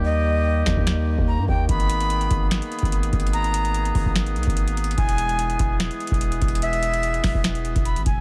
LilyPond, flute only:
\new Staff \with { instrumentName = "Flute" } { \time 4/4 \key gis \minor \tempo 4 = 146 dis''2 r4 ais''8 g''8 | b''2 r2 | ais''2 r2 | gis''2 r2 |
e''2 r4 b''8 gis''8 | }